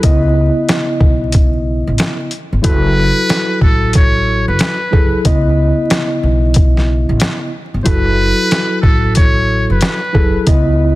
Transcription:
0.02 C#2 C#3 B3 E4 D#5, kick, closed hi-hat
0.69 snare, closed hi-hat
1.01 B1, kick
1.32 kick, closed hi-hat
1.87 A1
1.98 snare, closed hi-hat
2.31 closed hi-hat
2.53 G1
2.62 F#1 F#3 E4 F#4 A4 B4, kick, closed hi-hat
3.29 snare, closed hi-hat
3.61 A1 A4, kick
3.93 C#5, kick, closed hi-hat
4.48 F#1 B4
4.59 snare, closed hi-hat
4.91 F#1 F#3 E4 G#4 A4, kick
5.24 C#2 C#3 B3 E4 D#5, kick, closed hi-hat
5.90 snare, closed hi-hat
6.23 B1
6.54 kick, closed hi-hat
6.77 snare
7.09 A1
7.20 snare, closed hi-hat
7.74 G1
7.84 F#1 F#3 E4 F#4 A4 B4, kick, closed hi-hat
8.51 snare, closed hi-hat
8.81 A1 A4, kick
9.15 C#5, kick, closed hi-hat
9.70 F#1 B4
9.81 snare, closed hi-hat
10.12 F#1 F#3 E4 G#4 A4, kick
10.46 C#2 C#3 B3 E4 D#5, kick, closed hi-hat

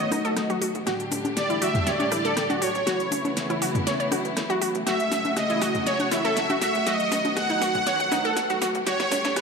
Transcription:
Already playing: D#3 F#3 A3 B3 F#4 D#5
0.11 B1 D#4, cross-stick, open hi-hat, high conga
0.25 B1 A4, closed hi-hat
0.37 cross-stick, snare, closed hi-hat
0.50 B1 F#4, closed hi-hat
0.62 F#4, open hi-hat
0.75 B1, closed hi-hat
0.87 A2 D3 G3 D4 F#4 G4, snare, closed hi-hat
1.00 closed hi-hat
1.11 G1, open hi-hat, high conga
1.25 G1, closed hi-hat, high conga
1.37 D5, snare, closed hi-hat
1.50 G1 E4, closed hi-hat
1.62 F#4 E5, open hi-hat
1.75 G1, closed hi-hat, mid tom
1.86 C#5 D5, snare, closed hi-hat
2.00 C#5, closed hi-hat, high conga
2.12 G2 E4, cross-stick, open hi-hat
2.25 G2 A4, closed hi-hat
2.37 cross-stick, snare, closed hi-hat
2.50 D1 F#4, closed hi-hat, high conga
2.61 F#4 C#5, open hi-hat
2.75 A1, closed hi-hat
2.87 C#3 E3 A3 B3 E4 F#4, snare, closed hi-hat
3.00 closed hi-hat
3.12 A1, open hi-hat, high conga
3.25 A1, closed hi-hat, high conga
3.37 snare, closed hi-hat
3.50 A2 E4, closed hi-hat
3.62 F#4, open hi-hat
3.75 A1, closed hi-hat, mid tom
3.87 C#5, snare, closed hi-hat
4.00 C#5, closed hi-hat
4.12 A1 F#4, cross-stick, open hi-hat, high conga
4.25 A1, closed hi-hat
4.37 cross-stick, snare, closed hi-hat
4.50 E2 F#4, closed hi-hat
4.62 F#4, open hi-hat
4.75 A1, closed hi-hat
4.87 C#3 F#3 G#3 F#4 E5, snare, closed hi-hat
5.00 closed hi-hat
5.11 F#1, snare, open hi-hat, high conga
5.25 F#1, closed hi-hat, high conga
5.36 D#5, cross-stick, snare, closed hi-hat
5.50 F#1 E4, closed hi-hat
5.62 F#4, cross-stick, snare, open hi-hat
5.75 F#1, closed hi-hat, mid tom
5.86 C#5, snare, closed hi-hat
6.00 F#5, closed hi-hat, high conga
6.11 F#2 E4 E5, snare, open hi-hat
6.25 F#2 A4, closed hi-hat
6.37 snare, closed hi-hat
6.50 E1 F#4, closed hi-hat, high conga
6.61 F#4 E5, snare, open hi-hat
6.75 G#1, closed hi-hat
6.86 D#3 F#3 B3 F#4 D#5, snare, closed hi-hat
7.00 closed hi-hat
7.12 B1, snare, open hi-hat, high conga
7.25 B1, closed hi-hat, high conga
7.36 F#5, cross-stick, snare, closed hi-hat
7.50 F#1 D#4, closed hi-hat
7.61 F#4 F#5, snare, open hi-hat
7.75 B1, closed hi-hat, mid tom
7.87 C#5, snare, closed hi-hat
8.00 F#5, closed hi-hat
8.11 B1 D#4, snare, open hi-hat, high conga
8.25 B1 A4, closed hi-hat
8.37 snare, closed hi-hat
8.50 B1 F#4, closed hi-hat
8.62 F#4, snare, open hi-hat
8.75 B1, closed hi-hat
8.87 A2 D3 G3 D4 F#4 G4 C#5, snare, closed hi-hat
9.00 snare, closed hi-hat
9.11 G1, snare, open hi-hat, high conga
9.25 G1, snare, closed hi-hat, high conga
9.36 B4, cross-stick, snare, closed hi-hat

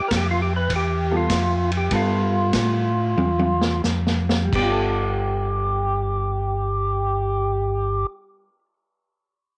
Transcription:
0.08 F2 A#4, kick, snare, hi-hat pedal, ride
0.17 G4
0.31 F4
0.42 G4
0.56 B4
0.69 E2, kick, ride
0.76 G4
1.11 G3 B3 F4 A4
1.17 F4
1.29 F2, kick, snare, hi-hat pedal, ride
1.72 ride
1.77 G4
1.91 G2 G3 B3 F4 A4, kick, ride
1.95 F4
2.53 A2, kick, snare, hi-hat pedal, ride
3.17 E2, high tom
3.39 high tom
3.61 snare
3.84 F2, snare, hi-hat pedal
4.07 snare
4.29 snare
4.45 G3
4.52 G1 B3 G4, kick, crash
4.63 F4
4.70 A4

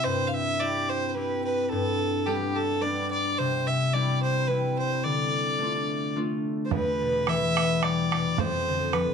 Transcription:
Already playing: C3 C4 D4 E4 G4
0.04 G2 C5
0.27 F5
0.34 E5
0.60 C4 E4 G4 D5
0.89 C5
1.09 C5
1.15 C4 E4 G4 B4
1.45 B4
1.65 B4
1.69 G2 A4
2.26 G3 B3 D4 G4
2.56 A4
2.81 G3 B3 D4 D5
3.11 D5
3.38 C3 C5
3.67 E5
3.94 G3 C4 E4 D5
4.23 C5
4.48 G3 C4 E4 B4
4.79 C5
5.04 D3 D5
5.59 A3 D4 F4
6.16 A3 D4 F4
6.65 C5
6.71 E2 B4, bodhran
7.02 B2
7.27 E3 E5, bodhran
7.42 bodhran
7.57 B3, bodhran
7.83 G3 D5, bodhran
8.12 B2, bodhran
8.38 F2 C5, bodhran
8.68 D3
8.93 F3 B4, bodhran
9.08 bodhran

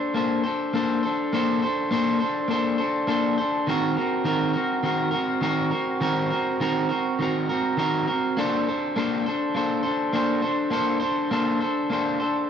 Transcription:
Already playing: D4 A4 C5
0.14 A#3 D4 A4 C5
0.44 D4 A4 C5
0.73 A#3 D4 A4 C5
1.03 D4 A4 C5
1.33 A#3 D4 A4 C5
1.62 D4 A4 C5
1.91 A#3 D4 A4 C5
2.20 A4 C5
2.24 D4
2.48 A#3 D4 A4 C5
2.78 D4 A4 C5
3.07 A#3 D4 A4 C5
3.38 D4 A4 C5
3.67 D#3 C4 F#4 A#4
3.97 C4 F#4 A#4
4.24 D#3 C4 F#4 A#4
4.53 C4 F#4 A#4
4.83 D#3 C4 F#4 A#4
5.11 C4 F#4 A#4
5.41 D#3 C4 F#4 A#4
5.71 C4 F#4 A#4
6.01 D#3 C4 F#4 A#4
6.30 C4 F#4 A#4
6.60 D#3 C4 F#4 A#4
6.89 C4 F#4 A#4
7.19 D#3 C4 F#4 A#4
7.49 C4 F#4 A#4
7.77 D#3 C4 F#4 A#4
8.07 C4 F#4 A#4
8.37 A#3 D4 A4 C5
8.67 D4 A4 C5
8.96 A#3 D4 A4 C5
9.26 D4 A4 C5
9.54 A#3 D4 A4 C5
9.83 D4 A4 C5
10.13 A#3 D4 A4 C5
10.42 D4 A4 C5
10.70 A#3 D4 A4 C5
11.00 D4 A4 C5
11.31 A#3 D4 A4 C5
11.61 D4 A4 C5
11.90 A#3 D4 A4 C5
12.20 D4 A4 C5

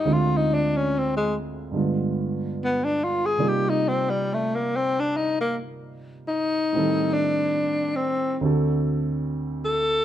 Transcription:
Already playing: D#4
0.05 D2 D3 G#3 C4 F4
0.13 F4
0.37 D#4
0.54 D4
0.77 C#4
0.98 C4
1.17 G#3
1.72 G2 D3 G#3 B3
1.77 F4
2.65 B3
2.85 D4
3.04 F4
3.26 G#4
3.38 C3 G3 A#3 D#4 F4 D5
3.48 G4
3.69 D#4
3.88 C4
4.10 G3
4.34 A3
4.55 A#3
4.76 C4
5.00 D4
5.17 D#4
5.41 A#3
6.28 D#4
6.73 A2 D#3 G3 C4
6.78 A4
7.14 D4
7.96 C4
8.41 D2 D3 C4 F#4
8.46 A4
9.65 A4

